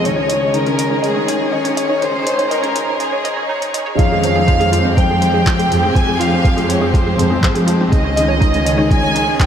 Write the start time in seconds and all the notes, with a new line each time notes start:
Already playing: G#3
0.04 C#2 D#3 C#4 G#4 C#5 D#5, closed hi-hat
0.16 C#4 C#5
0.28 D#3 D#5, closed hi-hat
0.41 D#4 C#5
0.54 D#3 D#4 A#4, closed hi-hat
0.66 C#4, closed hi-hat
0.78 D#3 D#5, closed hi-hat
0.90 D#4 C#5
1.02 D#3 G#4 D#5, closed hi-hat
1.15 C#4 C#5
1.27 D#3 D#4, closed hi-hat
1.41 D#4
1.52 D#3 C#5 D#5
1.64 C#4 C#5, closed hi-hat
1.77 D#3 D#5, closed hi-hat
1.89 D#4 C#5
2.01 C#2 D#3 D#4 C5, closed hi-hat
2.14 C#4
2.26 D#3 D#5, closed hi-hat
2.38 D#4 C#5, closed hi-hat
2.50 D#3 A#4 D#5, closed hi-hat
2.63 C#4 C#5, closed hi-hat
2.75 D#3 D#4, closed hi-hat
2.88 D#4
3.00 D#3 G#4 D#5, closed hi-hat
3.12 C#4 C#5
3.24 D#3 D#5, closed hi-hat
3.37 C#4 C#5
3.49 G#1 C#4 D#4 C#5
3.62 D#3, closed hi-hat
3.74 D#3 D#5, closed hi-hat
3.86 G#4 C#5
3.98 F2 F3 G#3 C4 F4 G4 F5, kick, closed hi-hat
4.12 G#3
4.23 F3 C5, closed hi-hat
4.36 C4 G#4
4.48 F3 C5, kick, closed hi-hat
4.60 G#3 G#4, closed hi-hat
4.72 F3 F4, closed hi-hat
4.85 C4
4.97 F3 C5 G5, kick, closed hi-hat
5.09 G#3 G#4
5.22 F3 C5, closed hi-hat
5.34 C4 G#4
5.46 F3 F4, kick, clap
5.59 G#3, closed hi-hat
5.71 F2 F3 C5, closed hi-hat
5.83 C4 G#4
5.95 F2 F3 C5 G#5, kick, closed hi-hat
6.07 G#3 G#4
6.19 F3 F4 F5, closed hi-hat
6.32 C4
6.44 F3 C5, kick, closed hi-hat
6.57 G#3 G#4, closed hi-hat
6.69 F3 C5 C#5, closed hi-hat
6.81 C4 G#4
6.93 F3 F4 C5, kick, closed hi-hat
7.06 G#3
7.18 F2 F3 C5, closed hi-hat
7.30 C4 G#4
7.43 F2 F3 C5, kick, clap
7.55 G#3 G#4, closed hi-hat
7.67 F3 F4, closed hi-hat
7.81 C4
7.91 C#2 D#3 C#4 G#4 D#5, kick, closed hi-hat
8.04 C#4 C#5
8.16 D#3 D#5, closed hi-hat
8.28 D#4 C#5
8.41 D#3 D#4, kick, closed hi-hat
8.54 C#4, closed hi-hat
8.66 D#3 D#5, closed hi-hat
8.78 D#4 C#5
8.90 D#3 D#5 G#5, kick, closed hi-hat
9.03 C#4 C#5
9.15 D#3 D#4, closed hi-hat
9.28 D#4
9.40 D#3 D#5 G5, kick, clap